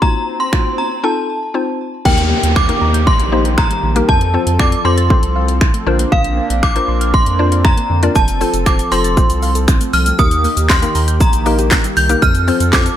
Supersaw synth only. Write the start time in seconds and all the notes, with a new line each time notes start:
2.05 D#3 A#3 G4
4.09 F3 C4 A4
5.87 A#3 D4
8.15 F3 A4
10.19 D#3 A#3 G4
12.22 F3 C4 A4